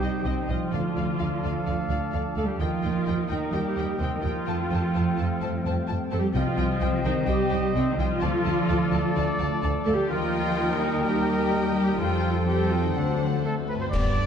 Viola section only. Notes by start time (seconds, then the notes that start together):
Already playing: G4
0.25 C4
0.41 D#4
0.50 F4
2.36 A4
2.45 G4
2.61 F4
3.30 D#4
3.53 G4
4.00 C4
4.17 D#4
4.24 F4
6.12 A4
6.18 G4
6.34 F4
7.05 D#4
7.27 G4
7.75 C4
7.91 D#4
7.98 F4
9.86 A4
9.94 G4
10.10 F4
10.81 D#4
11.05 G4
11.75 G4
11.99 F4
12.47 G4
12.71 F4
12.84 D#4
12.97 D4
13.93 G3 B3
14.16 D3 G3